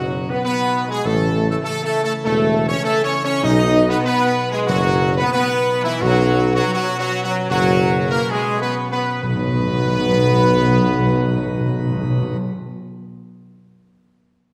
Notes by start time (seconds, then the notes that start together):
Already playing: F#1 B2 F#3 D#4 F#4
0.30 B3 B4
0.45 B3 B4
0.88 G#3 G#4
1.03 A1 C#3 E3 A3 E4 A4
1.47 A3 A4
1.62 A3 A4
1.82 A3 A4
2.03 A3 A4
2.24 E1 A3 A4
2.68 C#4 C#5
2.83 A3 A4
3.03 C#4 C#5
3.24 C#4 C#5
3.43 B1 B2 F#3 D#4 B4 D#5
3.89 B3 B4
4.04 B3 B4
4.52 G#3 G#4
4.67 F#1 F#3 F#4
5.17 B3 B4
5.32 B3 B4
5.84 E3 E4
6.01 B1 B2 F#3 C#4 F#4
6.55 F#3 F#4
6.73 F#3 F#4
6.98 F#3 F#4
7.24 F#3 F#4
7.49 F#1 F#3 F#4
8.10 A#3 A#4
8.31 G#3 G#4
8.60 B3 B4
8.92 B3 B4
9.23 B1 B2 F#3 B3 D#4 B4
9.29 B2
9.35 B2
9.41 B2
9.47 B2
9.54 B2
9.60 B2
9.66 B2
9.73 B2
9.79 B2
9.85 B2
9.91 B2
9.98 B2
10.04 B2
10.11 B2
10.17 B2
10.23 B2
10.30 B2
10.36 B2
10.43 B2
10.49 B2
10.62 B2
10.68 B2
10.74 B2
10.81 B2
10.86 B2
10.93 B2
10.99 B2
11.05 B2
11.12 B2
11.17 B2
11.24 B2
11.30 B2
11.36 B2
11.42 B2
11.48 B2
11.54 B2
11.60 B2
11.67 B2
11.73 B2
11.79 B2
11.85 B2
11.92 B2
11.97 B2
12.04 B2
12.10 B2
12.16 B2
12.22 B2
12.28 B2
12.34 B2